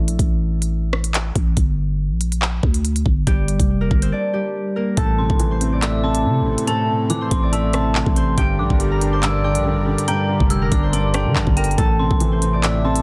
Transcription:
Already playing: A3 C4 D4 E4 A4 C5 D5 E5
0.08 A#1, closed hi-hat
0.19 A1, kick, closed hi-hat
0.62 closed hi-hat
0.93 cross-stick
1.04 closed hi-hat
1.14 clap, closed hi-hat
1.35 A1, kick, closed hi-hat
1.57 G1, kick, closed hi-hat
2.11 A#1
2.21 closed hi-hat
2.32 closed hi-hat
2.42 clap
2.63 D2, kick
2.74 closed hi-hat
2.85 closed hi-hat
2.96 closed hi-hat
3.06 G1, kick
3.27 G1 G3 G4, kick, closed hi-hat
3.48 closed hi-hat
3.60 F1, kick, closed hi-hat
3.81 A#3 A#4
3.91 G1, kick
4.02 C4 C5, closed hi-hat
4.12 D4 D5
4.33 G3 G4
4.76 A#3 A#4
4.97 A1 A2 C4 E4 A4 A5, kick, closed hi-hat
5.18 C3 C6
5.30 A1, kick
5.40 E3, closed hi-hat
5.51 C5 C6
5.61 C4, closed hi-hat
5.72 D5 D6
5.82 A2 E5 D6 E6, clap, closed hi-hat
6.03 C3 A4 A5 C6
6.15 closed hi-hat
6.25 C3
6.41 A1
6.46 C3
6.58 closed hi-hat
6.67 A2 A4 A5, closed hi-hat
6.89 C3
7.10 E3 D6, closed hi-hat
7.21 C5 C6
7.31 A1 C4 C6, kick, closed hi-hat
7.43 D5 D6
7.52 A2 E5 A5 E6, closed hi-hat
7.73 C3 A4 A5 C6, cross-stick, closed hi-hat
7.95 C3, clap
8.06 A1, kick
8.16 C3 C5 C6, closed hi-hat
8.38 G1 G2 G3 G4 A#4 D5 G5, kick, closed hi-hat
8.59 A#1 D3 D6
8.70 G1, kick
8.80 G3, closed hi-hat
8.91 A#4 A#5
9.01 D4, closed hi-hat
9.13 C5 C6
9.23 G2 D5 D6 E6, clap, closed hi-hat
9.44 D3 G4 G5 D6
9.55 A#1, closed hi-hat
9.65 D3
9.77 G1
9.87 D3
9.98 closed hi-hat
10.08 G2 G4 G5 A#5, closed hi-hat
10.29 D3
10.40 F1, kick
10.50 G3 E6, closed hi-hat
10.62 A#4 A#5
10.72 G1 D4 D6, kick, closed hi-hat
10.83 C5 C6
10.93 G2 D5 A#5 D6, closed hi-hat
11.14 D3 G4 G5 A5, cross-stick, closed hi-hat
11.25 D3
11.36 G1 D3, clap
11.47 G1, kick
11.57 D3 A#4 G5 A#5, closed hi-hat
11.64 closed hi-hat
11.71 closed hi-hat
11.78 A1 A2 C4 E4 A4 A5, kick, closed hi-hat
11.99 C3 C6
12.11 A1, kick
12.20 E3, closed hi-hat
12.32 C5 C6
12.42 C4, closed hi-hat
12.53 D5 D6
12.63 A2 E5 D6 E6, clap, closed hi-hat
12.84 C3 A4 A5 C6
12.96 closed hi-hat

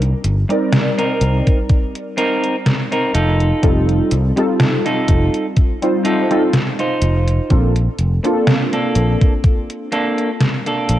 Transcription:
Already playing: C2
0.02 closed hi-hat
0.24 G1, closed hi-hat
0.49 G3 C4 D#4 A#4 D5, muted clean electric guitar stroke, closed hi-hat
0.72 muted clean electric guitar stroke, snare, closed hi-hat
0.98 C4 D#4 A#4, closed hi-hat
1.21 C2, closed hi-hat
1.47 kick, closed hi-hat
1.69 kick, closed hi-hat
1.95 closed hi-hat
2.17 C4 D#4 A#4, closed hi-hat
2.44 closed hi-hat
2.66 snare, closed hi-hat
2.92 C4 D#4 A#4, closed hi-hat
3.14 F1 D#4 F4 A4, closed hi-hat
3.40 closed hi-hat
3.62 F1 G3 C4 D#4 F4 A4, kick, closed hi-hat
3.89 closed hi-hat
4.11 C2, closed hi-hat
4.36 G3 C4 D#4 F4 A4, muted clean electric guitar stroke, closed hi-hat
4.60 muted clean electric guitar stroke, snare, closed hi-hat
4.85 D#4 F4 A4, closed hi-hat
5.08 F1, kick, closed hi-hat
5.34 closed hi-hat
5.57 kick, closed hi-hat
5.82 G3 C4 D#4 F4 C5, closed hi-hat
6.05 D#4 F4 A4, closed hi-hat
6.30 G3 C4 D#4 F4 A4, closed hi-hat
6.53 snare, closed hi-hat
6.79 D#4 F4 C5, closed hi-hat
7.02 F1, closed hi-hat
7.28 closed hi-hat
7.50 A#1 A#3 C4 D4 F4 A4, kick, closed hi-hat
7.76 closed hi-hat
7.99 F1, closed hi-hat
8.23 A#3 C4 D4 F4 A4, muted clean electric guitar stroke, closed hi-hat
8.47 muted clean electric guitar stroke, snare, closed hi-hat
8.73 A#3 D4 A4, closed hi-hat
8.95 A#1, closed hi-hat
9.21 kick, closed hi-hat
9.44 kick, closed hi-hat
9.70 closed hi-hat
9.92 A#3 D4 A4, closed hi-hat
10.18 closed hi-hat
10.40 snare, closed hi-hat
10.66 A#3 D4 A4, closed hi-hat
10.89 A#1, closed hi-hat

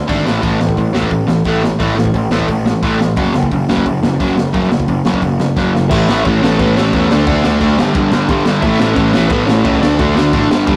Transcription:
0.07 G#1 D3 A3 D4, kick, open hi-hat
0.25 A1 A2 E3 A3, snare
0.42 A1 A2 E3 A3, kick, open hi-hat
0.60 A1 A2 E3, snare
0.69 kick
0.77 A1 A2 E3, kick, open hi-hat
0.93 A1 A2 E3 A3, snare
1.03 kick
1.11 A1 A2 E3, kick, open hi-hat
1.27 A1 A2 E3, snare
1.44 A1 A2 E3 A3, kick, open hi-hat
1.63 A2 E3, snare
1.79 A1 A2 E3 A3, kick, open hi-hat
1.95 A1 A2 E3, snare
2.05 kick
2.13 A1 A2 E3, kick, open hi-hat
2.31 A1 A2 E3 A3, snare
2.40 kick
2.48 A1 A2 E3, kick, open hi-hat
2.65 A2 E3, snare
2.82 A1 A2 E3 A3, kick, open hi-hat
2.99 A2 E3, snare
3.16 F#1 F#2 C#3 F#3, kick, open hi-hat
3.34 F#1 F#2 C#3, snare
3.43 kick
3.51 F#1 F#2 C#3, kick, open hi-hat
3.69 F#1 F#2 C#3 F#3, snare
3.77 kick
3.85 F#1 F#2 C#3, kick, open hi-hat
4.02 F#1 F#2 C#3, snare
4.20 F#1 F#2 C#3 F#3, kick, open hi-hat
4.37 F#2 C#3, snare
4.53 F#1 F#2 C#3 F#3, kick, open hi-hat
4.70 F#1 F#2 C#3, snare
4.80 kick
4.88 F#1 F#2 C#3, kick, open hi-hat
5.05 F#1 F#2 C#3 F#3, snare
5.14 kick
5.22 F#1 F#2 C#3, kick, open hi-hat
5.40 F#2 C#3, snare
5.56 F#1 F#2 C#3 F#3, kick, snare
5.75 F#2 C#3, snare
5.90 A1 A2 E3 A3 E4 E5, kick, crash
6.08 A1 A2 E3 A3, snare
6.25 A1 A2 E3 A3 C#4 C#5, kick, crash
6.42 A1 A2 E3 A3, snare
6.58 A1 A2 E3 A3 B3 B4, kick, crash
6.76 A1 A2 E3 A3 C#4 C#5, snare
6.92 E2 A2 E3 A3, kick, crash
7.11 D2 D3 A3 D4 D5, snare
7.26 D2 D3 A3 D4 F#4 F#5, kick, crash
7.44 D2 D3 A3 D4, snare
7.60 D2 D3 A3 D4, kick, crash
7.77 G1 G2 D3 G3, snare
7.94 G1 G2 D3 G3, kick, crash
8.12 G1 G2 D3 G3, snare
8.28 G1 G2 D3 G3, kick, crash
8.46 G1 G2 D3 G3, snare
8.62 A1 A2 E3 A3 E4 E5, kick, crash
8.79 A1 A2 E3 A3, snare
8.95 A1 A2 E3 A3 C#4 C#5, kick, crash
9.13 A1 A2 E3 A3, snare
9.28 A1 A2 B3 B4, kick, crash
9.32 E3 A3
9.46 A1 A2 E3 A3 C#4 C#5, snare
9.65 C#2 A2 E3 A3, kick, crash
9.80 D2 D3 A3 D4 D5, snare
9.97 D2 D3 A3 D4 F#4 F#5, kick, crash
10.15 D2 D3 A3 D4, snare
10.33 A1 D3 A3 D4, kick, crash
10.50 G1 G2 D3 G3, snare
10.67 G1 G2 D3 G3, kick, crash

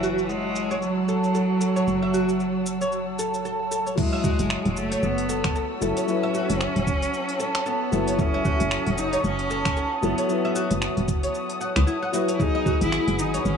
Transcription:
Already playing: F#1 E3 F#3 E4 F#4 C#5 F#5 A5 E6
0.03 F#4, shaker
0.19 shaker
0.29 G#3, shaker
0.56 shaker
0.71 C#5, shaker
0.82 F#3, shaker
1.08 A4, shaker
1.24 shaker
1.35 A4, shaker
1.61 A4, shaker
1.76 C#5, shaker
1.87 F#1, shaker
2.02 E5
2.14 F#4, shaker
2.29 shaker
2.40 shaker
2.66 shaker
2.81 C#5, shaker
2.92 shaker
3.19 A4, shaker
3.34 shaker
3.45 A4, shaker
3.71 A4, shaker
3.87 C#5, shaker
3.95 F#3 G#3 E4 C#5 F#5 A5 E6, kick, crash, shaker
3.99 F#4
4.13 E5
4.24 F#4, kick, shaker
4.39 F#1, open hi-hat, shaker
4.50 finger snap, shaker
4.65 E1, open hi-hat
4.76 F#1 A3, shaker
4.92 C#5, open hi-hat, shaker
5.03 F#1 B3, shaker
5.18 open hi-hat
5.29 A4, shaker
5.44 finger snap, kick, open hi-hat, shaker
5.55 A4, shaker
5.81 F#1 F#3 C#4 E4 A4, shaker
5.97 C#5, open hi-hat, shaker
6.06 F#3 E4, shaker
6.10 B4
6.23 E5
6.34 F#4, shaker
6.50 F#1, open hi-hat, shaker
6.61 finger snap, shaker
6.76 E1, open hi-hat
6.87 F#1, kick, shaker
7.02 C#5, open hi-hat, shaker
7.14 shaker
7.29 open hi-hat
7.40 A4, shaker
7.55 finger snap, open hi-hat, shaker
7.66 B3 A4, shaker
7.91 F#1 F#3 E4 A4 B4, shaker
8.08 C#5, open hi-hat, shaker
8.17 F#3 C#4 E4 A4 D#6, kick, shaker
8.34 E5
8.45 F#4, kick, shaker
8.60 F#1, open hi-hat, shaker
8.71 finger snap, shaker
8.87 E1, open hi-hat
8.98 F#1 D#4, shaker
9.13 C#5, open hi-hat, shaker
9.24 F#1 C#4, shaker
9.39 open hi-hat
9.50 A4, shaker
9.65 finger snap, kick, open hi-hat, shaker
9.77 A4, shaker
10.02 F#1 F#3 B3 E4 A4, shaker
10.18 C#5, open hi-hat, shaker
10.27 F#3 E4 B4, shaker
10.45 E5
10.56 F#4, shaker
10.71 F#1, open hi-hat, shaker
10.82 finger snap, shaker
10.97 E1, open hi-hat
11.08 F#1, kick, shaker
11.23 C#5, open hi-hat, shaker
11.35 shaker
11.50 open hi-hat
11.61 F#5, shaker
11.76 C#2 B4, finger snap, open hi-hat, shaker
11.87 E4, shaker
12.02 F#5
12.12 F#3 E4 F#4 B4, shaker
12.28 C#5, open hi-hat, shaker
12.34 F#3 E4
12.39 B3 D#4 G#4 B4 F#5 G#5, kick, shaker
12.55 D#5
12.66 F#4, kick, shaker
12.81 G#1 E4, open hi-hat, shaker
12.92 finger snap, shaker
13.08 F#1, open hi-hat
13.19 G#1 D#4, shaker
13.34 C#5, open hi-hat, shaker
13.45 G#1 C#4, shaker

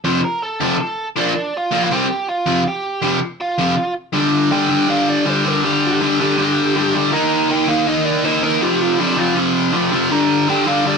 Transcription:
0.04 F2 C3 F3 C5 C6
0.24 A#4 A#5
0.42 A4 A5
0.60 F2 C3 F3
0.81 A4 A5
1.16 A#2 F3 A#3 D4 D5
1.57 F4 F5
1.72 A#2 F3 A#3
1.84 F5
1.91 C3 G3 C4 G4 G5
2.29 F4 F5
2.46 F2 C3 F3
2.67 G4 G5
3.02 F2 C3 F3
3.41 F4 F5
3.58 F2 C3 F3
4.13 G2 D3 G3
4.51 G2 D3 G3 G5
4.69 G2 D3 G3
4.88 G2 D3 G3 F5
5.10 D5
5.25 G2 D3 G3 C5
5.44 G2 D3 G3 A#4
5.64 G2 D3 G3 G4
5.86 G4
6.01 G2 D3 G3
6.20 G2 D3 G3
6.38 G2 D3 G3
6.76 G2 D3 G3
6.94 G2 D3 G3
7.12 D#3 A#3 D#4 A#5
7.49 D#3 A#3 D#4 G5
7.67 D#3 A#3 D#4 F5
7.86 D#3 A#3 D#4 D#5
8.05 D5
8.24 D#3 A#3 D#4 C5
8.42 D#3 A#3 D#4 A#4
8.62 F2 C3 F3 G4
8.81 F4
8.99 F2 C3 F3 D4
9.17 F2 C3 F3 F4
9.35 F2 C3 F3
9.72 F2 C3 F3
9.91 F2 C3 F3
10.10 G2 D3 G3 A#5
10.48 G2 D3 G3 G5
10.66 G2 D3 G3 F5
10.85 G2 D3 G3 D5

